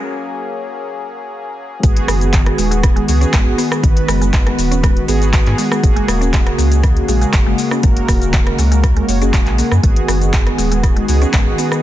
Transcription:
Already playing: analog synth pad F#3 A#3 C#4 G#4
1.83 sub bass G#1, analog synth pad D#3 G#3 B3 F#4, synth pluck G#3, analog polysynth B3 F#4 G#4, kick, closed hi-hat, cabasa
1.97 closed hi-hat
2.08 sub bass F#1, synth pluck B3, cross-stick, open hi-hat, cabasa
2.21 closed hi-hat, cabasa
2.33 synth pluck D#3, kick, clap, closed hi-hat, cabasa
2.46 cross-stick, closed hi-hat
2.58 sub bass D#1, synth pluck G#3, open hi-hat, cabasa
2.71 synth pluck G#3, closed hi-hat, cabasa
2.83 kick, cross-stick, closed hi-hat, cabasa
2.96 synth pluck G#3, closed hi-hat
3.08 sub bass C#2, analog polysynth B3 F#4 G#4, open hi-hat, cabasa
3.21 synth pluck C#4, closed hi-hat, cabasa
3.33 sub bass G#1, synth pluck G#3, kick, cross-stick, clap, closed hi-hat, cabasa
3.47 sub bass G#1
3.58 synth pluck B3, open hi-hat, cabasa
3.72 cross-stick, cabasa
3.83 sub bass G#1, synth pluck D#3, analog polysynth B3 F#4 B4, kick, closed hi-hat, cabasa
3.97 closed hi-hat
4.08 sub bass F#1, synth pluck G#3, cross-stick, open hi-hat, cabasa
4.21 synth pluck G#3, closed hi-hat, cabasa
4.33 kick, clap, closed hi-hat, cabasa
4.46 synth pluck G#3, cross-stick, closed hi-hat
4.58 sub bass D#1, open hi-hat, cabasa
4.71 synth pluck C#4, closed hi-hat, cabasa
4.83 synth pluck G#3, kick, cross-stick, closed hi-hat, cabasa
4.97 closed hi-hat
5.08 sub bass G#1, analog polysynth B3 F#4 G#4, synth pluck B3, open hi-hat, cabasa
5.22 closed hi-hat, cabasa
5.33 synth pluck D#3, analog polysynth B3 F#4 G#4, kick, cross-stick, clap, closed hi-hat, cabasa
5.46 sub bass G#2, clap, closed hi-hat
5.58 synth pluck G#3, open hi-hat, cabasa
5.71 synth pluck G#3, cross-stick, cabasa
5.83 sub bass F#1, analog synth pad C#3 A#3, analog polysynth A#3 F#4 G#4, kick, closed hi-hat, cabasa
5.96 synth pluck G#3, closed hi-hat
6.08 sub bass D#1, cross-stick, open hi-hat, cabasa
6.21 synth pluck C#4, closed hi-hat, cabasa
6.33 synth pluck G#3, kick, clap, closed hi-hat, cabasa
6.47 cross-stick, closed hi-hat
6.58 sub bass C#2, synth pluck A#3, open hi-hat, cabasa
6.72 closed hi-hat, cabasa
6.83 synth pluck D#3, kick, cross-stick, closed hi-hat, cabasa
6.97 closed hi-hat
7.08 sub bass A#1, synth pluck G#3, analog polysynth A#3 F#4 G#4, open hi-hat, cabasa
7.21 synth pluck G#3, closed hi-hat, cabasa
7.33 sub bass F#1, kick, cross-stick, clap, closed hi-hat, cabasa
7.46 sub bass F#1, synth pluck G#3
7.58 open hi-hat, cabasa
7.71 synth pluck C#4, cross-stick, cabasa
7.83 sub bass F#1, synth pluck G#3, analog polysynth A#3 F#4 A#4, kick, closed hi-hat, cabasa
7.97 closed hi-hat
8.08 sub bass D#1, synth pluck A#3, kick, cross-stick, open hi-hat, cabasa
8.22 closed hi-hat, cabasa
8.34 synth pluck D#3, kick, clap, closed hi-hat, cabasa
8.47 cross-stick, closed hi-hat
8.58 sub bass C#2, synth pluck G#3, open hi-hat, cabasa
8.72 synth pluck G#3, closed hi-hat, cabasa
8.84 kick, cross-stick, closed hi-hat, cabasa
8.97 synth pluck G#3, closed hi-hat
9.08 sub bass F#1, analog polysynth A#3 F#4 C#5, open hi-hat, cabasa
9.21 analog polysynth A#3 F#4 G#4, synth pluck C#4, closed hi-hat, cabasa
9.33 sub bass D#1, synth pluck G#3, kick, cross-stick, clap, closed hi-hat, cabasa
9.47 sub bass A#1, clap, closed hi-hat
9.58 synth pluck A#3, open hi-hat, cabasa
9.72 sub bass F#2, cross-stick, cabasa
9.83 sub bass G#1, analog synth pad D#3 B3 F#4, synth pluck G#3, analog polysynth B3 F#4 G#4, kick, closed hi-hat, cabasa
9.96 closed hi-hat
10.08 sub bass F#1, synth pluck B3, cross-stick, open hi-hat, cabasa
10.22 closed hi-hat, cabasa
10.33 synth pluck D#3, kick, clap, closed hi-hat, cabasa
10.47 cross-stick, closed hi-hat
10.58 sub bass D#1, synth pluck G#3, open hi-hat, cabasa
10.71 synth pluck G#3, closed hi-hat, cabasa
10.83 kick, cross-stick, closed hi-hat, cabasa
10.96 synth pluck G#3, closed hi-hat
11.08 sub bass C#2, analog polysynth B3 F#4 G#4, open hi-hat, cabasa
11.22 synth pluck C#4, closed hi-hat, cabasa
11.33 sub bass G#1, synth pluck G#3, kick, cross-stick, clap, closed hi-hat, cabasa
11.47 sub bass G#1
11.58 synth pluck B3, open hi-hat, cabasa
11.72 cross-stick, cabasa

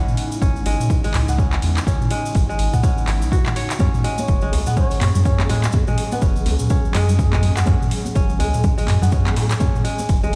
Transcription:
Already playing: ambient pad C#3 G#3 D#4 E4, kora G#3 B3 C#4, bansuri F#5
0.07 mid tom, cabasa
0.17 open hi-hat
0.32 cabasa
0.42 sub bass G#1, kora C#4, kick, cabasa
0.56 cabasa
0.66 sub bass G#1, kora G#3, open hi-hat
0.80 mid tom, cabasa
0.90 kick, cabasa
1.04 kora G#3, open hi-hat, cabasa
1.14 sub bass C#2, clap, mid tom, open hi-hat
1.28 sub bass C#2, kora B3, cabasa
1.38 kora C#4, kick, cabasa
1.53 clap, cabasa
1.62 sub bass E2, open hi-hat
1.77 clap, cabasa
1.87 sub bass C#2, kora C#4, kick, cabasa
2.01 mid tom, cabasa
2.11 kora G#3, open hi-hat
2.26 cabasa
2.35 sub bass G#1, kick, open hi-hat, cabasa
2.49 kora G#3, cabasa
2.59 sub bass G#1, open hi-hat
2.73 kora B3, kick, mid tom, cabasa
2.83 kora C#4, kick, cabasa
2.98 cabasa
3.07 sub bass G#1, kora E4, clap, open hi-hat
3.21 sub bass B1, cabasa
3.32 kora F#4, kick, cabasa
3.45 sub bass G#1, clap, mid tom, cabasa
3.56 kora C#5, open hi-hat
3.70 clap, cabasa
3.79 sub bass F#2, ambient pad F#3 C#4 G#4, kora C#4, kick, high conga, djembe tone, cabasa
3.94 mid tom, muted conga, cabasa
4.04 kora G#3, open hi-hat
4.18 bansuri C#5, muted conga, high conga, cabasa
4.28 sub bass F#1, kick, cabasa
4.41 kora G#3, muted conga, cabasa
4.52 sub bass C#2, open hi-hat, djembe slap, high conga, djembe bass
4.66 kora B3, mid tom, djembe tone, cabasa
4.76 kora C#4, bansuri C#5, kick, muted conga, low conga, cabasa
4.91 open hi-hat, cabasa
5.00 sub bass F#2, clap, mid tom, open hi-hat, muted conga, high conga
5.15 sub bass F#2, low conga, cabasa
5.25 kora C#4, bansuri C#5, kick, muted conga, cabasa
5.39 clap, high conga, djembe tone, cabasa
5.49 sub bass A2, kora G#3, open hi-hat, djembe slap
5.63 clap, muted conga, cabasa
5.72 sub bass F#2, kick, djembe tone, high conga, cabasa
5.87 kora G#3, mid tom, muted conga, cabasa
5.98 open hi-hat
6.12 kora B3, bansuri B4, muted conga, high conga, cabasa
6.22 sub bass F#1, kora C#4, kick, cabasa
6.35 muted conga, djembe tone, cabasa
6.46 sub bass C#2, open hi-hat, djembe slap, high conga, djembe bass
6.59 mid tom, djembe tone, cabasa
6.70 kora C#4, kick, muted conga, djembe tone, cabasa
6.85 cabasa
6.94 sub bass F#2, kora G#3, bansuri G#4, clap, open hi-hat, muted conga
7.09 low conga, cabasa
7.18 kick, muted conga, cabasa
7.32 kora G#3, clap, mid tom, high conga, djembe bass, cabasa
7.42 open hi-hat, low conga
7.56 sub bass F#2, kora B3, clap, muted conga, cabasa
7.66 sub bass F#2, kora C#4, kick, high conga, djembe tone, cabasa
7.81 mid tom, muted conga, cabasa
7.91 open hi-hat
8.05 muted conga, high conga, cabasa
8.15 sub bass F#1, kora C#4, kick, cabasa
8.29 muted conga, cabasa
8.39 sub bass C#2, kora G#3, open hi-hat, djembe slap, high conga, djembe bass
8.54 mid tom, djembe tone, cabasa
8.63 kick, muted conga, low conga, cabasa
8.78 kora G#3, open hi-hat, cabasa
8.87 sub bass F#2, clap, mid tom, open hi-hat, muted conga, high conga
9.02 sub bass F#2, kora B3, low conga, cabasa
9.11 kora C#4, kick, muted conga, cabasa
9.26 clap, high conga, djembe tone, cabasa
9.36 sub bass A2, open hi-hat, djembe slap
9.50 clap, muted conga, cabasa
9.60 sub bass F#2, kora C#4, kick, high conga, djembe tone, cabasa
9.75 mid tom, muted conga, cabasa
9.84 kora G#3, open hi-hat
9.99 muted conga, high conga, cabasa
10.09 sub bass F#1, kick, open hi-hat, cabasa
10.23 kora G#3, muted conga, djembe tone, cabasa

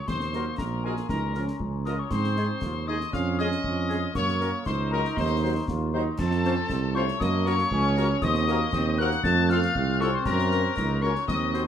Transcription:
0.07 tuba D#2, trombone section C4, trumpet section C5, piccolo C6, glockenspiel C6, concert bass drum, snare, crash
0.20 snare
0.33 french horn section F#3 D#4 A#4, trombone section A#3, woodwind section F#4 A#4, snare
0.58 tuba A#1, trumpet section A#4, piccolo A#5, glockenspiel A#5, concert bass drum, snare
0.83 french horn section F#3 D#4 A#4, woodwind section F#4 A#4, trumpet section G#4, piccolo G#5, glockenspiel G#5
0.96 snare
1.09 tuba C#2, trombone section D#4, trumpet section A#4, piccolo A#5, glockenspiel A#5, concert bass drum, snare
1.34 french horn section F3 F4 A#4, trombone section C#4, woodwind section F4 A#4, snare
1.47 snare
1.60 tuba C#2, concert bass drum
1.85 french horn section F3 F4 A#4, woodwind section F4 A#4, trumpet section D#5, piccolo D#6, glockenspiel D#6, snare
1.99 trumpet section C#5, piccolo C#6, glockenspiel C#6
2.11 tuba G#2, trombone section C4, trumpet section C5, glockenspiel C6, piccolo C6, concert bass drum, snare, crash
2.24 snare
2.36 french horn section G#3 D#4 G#4, woodwind section D#4 G#4, snare
2.62 tuba D#2, trombone section F4, concert bass drum, snare
2.87 french horn section G#3 D#4 G#4, woodwind section D#4 G#4, trombone section D#4, trumpet section D#5, piccolo D#6, glockenspiel D#6
3.00 snare
3.12 tuba F2, trombone section C#4, trumpet section F5, piccolo F6, glockenspiel F6, concert bass drum, snare
3.38 french horn section G#3 C#4 G#4, woodwind section C#4 G#4, trumpet section D#5, piccolo D#6, glockenspiel D#6, snare
3.51 snare
3.64 tuba F2, concert bass drum
3.89 french horn section G#3 C#4 G#4, woodwind section C#4 G#4, snare
4.14 tuba F#2, trombone section A#3, trumpet section C#5, piccolo C#6, glockenspiel C#6, concert bass drum, snare, crash
4.28 snare
4.40 french horn section F#3 C#4 A#4, woodwind section F#4 A#4, snare
4.66 tuba C#2, trombone section D#4, trumpet section C5, piccolo C6, glockenspiel C6, concert bass drum, snare
4.91 french horn section F#3 C#4 A#4, woodwind section F#4 A#4, trumpet section A#4, glockenspiel A#5, piccolo A#5
5.04 snare
5.17 tuba D#2, trumpet section C5, piccolo C6, glockenspiel C6, concert bass drum, snare
5.42 french horn section F#3 D#4 C5, woodwind section F#4 C5
5.68 tuba D#2, trombone section F4, concert bass drum, snare
5.94 french horn section F#3 D#4 C5, trombone section D#4, woodwind section F#4 C5
6.18 tuba F2, trombone section C4, trumpet section A4, piccolo A5, glockenspiel A5, concert bass drum, snare, crash
6.31 snare
6.44 french horn section F3 C4 C5, trombone section C#4, woodwind section F4 C5, snare
6.69 tuba C2, trombone section C4, concert bass drum, snare
6.94 french horn section F3 C4 C5, trombone section A3, woodwind section F4 C5, trumpet section C#5, piccolo C#6, glockenspiel C#6
7.08 snare
7.20 tuba F#2, trombone section A#3, trumpet section D#5, piccolo D#6, glockenspiel D#6, concert bass drum, snare
7.45 french horn section A#3 F#4 A#4, woodwind section F#4 A#4, trumpet section C#5, piccolo C#6, glockenspiel C#6, snare
7.58 snare
7.71 tuba C#2, trombone section C#4, concert bass drum
7.97 french horn section A#3 F#4 A#4, woodwind section F#4 A#4, snare
8.22 tuba D#2, trombone section C4, trumpet section D#5, piccolo D#6, glockenspiel D#6, concert bass drum, snare, crash
8.35 snare
8.47 trombone section A#3, french horn section C4 F#4 A#4, woodwind section F#4 A#4, snare
8.73 tuba D#2, trombone section C4, concert bass drum, snare
8.98 trombone section A#3, french horn section C4 F#4 A#4, woodwind section F#4 A#4, trumpet section F#5, piccolo F#6, glockenspiel F#6
9.11 snare
9.23 tuba F2, trombone section A3, trumpet section A5, piccolo A6, glockenspiel A6, concert bass drum, snare
9.49 french horn section C4 F4 A4, woodwind section F4 A4, trumpet section F5, piccolo F6, glockenspiel F6, snare
9.62 snare
9.74 tuba C2, trombone section C4, concert bass drum
10.00 french horn section C4 F4 A4, woodwind section F4 A4, trumpet section C#5, piccolo C#6, glockenspiel C#6, snare
10.14 trumpet section C5, glockenspiel C6, piccolo C6
10.25 tuba F#2, trumpet section A#4, glockenspiel A#5, piccolo A#5, concert bass drum, snare, crash
10.39 snare
10.51 french horn section A#3 C#4 A#4, woodwind section F#4 A#4, snare
10.77 tuba C#2, trombone section D#4, concert bass drum, snare
11.02 french horn section A#3 C#4 A#4, trombone section C#4, woodwind section F#4 A#4, trumpet section C#5, piccolo C#6, glockenspiel C#6
11.15 snare
11.27 tuba D#2, trombone section C4, trumpet section D#5, piccolo D#6, glockenspiel D#6, concert bass drum, snare
11.53 french horn section C4 D#4 F#4, woodwind section F#4 C5, snare

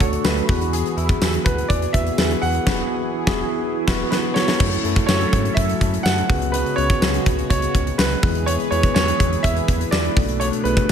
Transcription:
Already playing: analog synth pad D3 D4 F#4 A4, tine electric piano D3, grand piano A4
0.00 analog synth bass D2, tine electric piano A3 D4 F#4 A4, clean electric guitar C#5, kick, closed hi-hat
0.13 closed hi-hat
0.24 analog synth bass D2, tine electric piano A3 D4 F#4 B4, clean electric guitar B4, snare, tambourine
0.37 closed hi-hat
0.48 analog synth bass E2, tine electric piano E3 B3 E4 F#4 G#4, analog synth pad E3 B3 G#4, clean electric guitar B4, kick, open hi-hat
0.61 closed hi-hat
0.73 clean electric guitar G#4, closed hi-hat
0.86 closed hi-hat
0.97 analog synth bass E2, clean electric guitar E4, closed hi-hat
1.09 kick, closed hi-hat
1.21 analog synth bass E2, snare, tambourine
1.34 closed hi-hat
1.44 analog synth bass D2, grand piano B4, kick, closed hi-hat
1.58 closed hi-hat
1.68 analog synth bass E2, grand piano D5, kick, closed hi-hat
1.82 closed hi-hat
1.93 analog synth bass E2, tine electric piano B3 E4 F#4 B4, grand piano E5, kick, closed hi-hat
2.06 closed hi-hat
2.17 analog synth bass E2, tine electric piano B3 E4 F#4 B4, snare, tambourine
2.30 closed hi-hat
2.42 analog synth bass E2, tine electric piano E3, analog synth pad E4, grand piano F#5, open hi-hat
2.55 closed hi-hat
2.66 analog synth bass E1, tine electric piano B3 E4 F#4 G#4, kick, snare, crash
3.27 analog synth bass E1, tine electric piano B3 E4 F#4 G#4, kick, snare
3.87 analog synth bass E1, tine electric piano B3 E4 F#4 B4, kick, snare, crash
4.10 grand piano B4, snare
4.34 grand piano C#5, snare
4.48 snare
4.60 analog synth bass F#2, analog synth pad F#3 C#4 E4 A4, tine electric piano A3 C#4 E4 F#4 A4, kick, crash
4.72 closed hi-hat
4.84 analog synth bass F#2, tine electric piano A3 C#4 E4 F#4 A4, closed hi-hat
4.96 kick, closed hi-hat
5.06 analog synth bass F#2, grand piano C#5, snare, tambourine
5.21 closed hi-hat
5.33 analog synth bass G#2, kick, closed hi-hat
5.45 closed hi-hat
5.54 analog synth bass F#2, grand piano E5, kick, closed hi-hat
5.69 closed hi-hat
5.81 analog synth bass F#2, kick, closed hi-hat
5.94 closed hi-hat
6.03 analog synth bass F#2, grand piano F#5, snare, tambourine
6.18 closed hi-hat
6.29 analog synth bass C#2, analog synth pad C#3 G#3 B3 F#4, tine electric piano C#3 B3 C#4 F#4 G#4 B4, kick, open hi-hat
6.42 closed hi-hat
6.52 grand piano B4, closed hi-hat
6.66 closed hi-hat
6.76 analog synth bass C#2, tine electric piano B3 C#4 F#4 G#4 B4, grand piano C#5, closed hi-hat
6.90 kick, closed hi-hat
7.02 analog synth bass C#2, snare, tambourine
7.14 closed hi-hat
7.26 analog synth bass C#2, kick, closed hi-hat
7.39 closed hi-hat
7.50 analog synth bass C#2, grand piano C#5, kick, closed hi-hat
7.62 closed hi-hat
7.75 analog synth bass C#2, kick, closed hi-hat
7.87 closed hi-hat
7.98 analog synth bass C#2, grand piano B4, snare, tambourine
8.11 closed hi-hat
8.23 analog synth bass E2, analog synth pad E3 E4 G#4 B4, tine electric piano E3 G#3 B3 E4 G#4 B4, kick, open hi-hat
8.35 closed hi-hat
8.46 grand piano C#5, closed hi-hat
8.60 closed hi-hat
8.71 analog synth bass E2, tine electric piano G#3 B3 E4 F#4 B4, grand piano C#5, closed hi-hat
8.78 tine electric piano G#4
8.83 kick, closed hi-hat
8.94 analog synth bass E2, grand piano C#5, snare, tambourine
9.08 closed hi-hat
9.20 analog synth bass E2, kick, closed hi-hat
9.33 closed hi-hat
9.43 analog synth bass E2, grand piano E5, kick, closed hi-hat
9.56 closed hi-hat
9.68 analog synth bass E2, kick, closed hi-hat
9.81 closed hi-hat
9.91 analog synth bass E2, grand piano D5, snare, tambourine
10.05 closed hi-hat
10.16 analog synth bass B1, tine electric piano B2 A3 B3 D4 F#4 A4, analog synth pad A3 B3 D4, kick, open hi-hat
10.29 closed hi-hat
10.40 grand piano C#5, closed hi-hat
10.53 closed hi-hat
10.64 analog synth bass B1, tine electric piano A3 B3 D4 F#4 G#4, grand piano B4, closed hi-hat
10.77 kick, closed hi-hat
10.89 analog synth bass B1

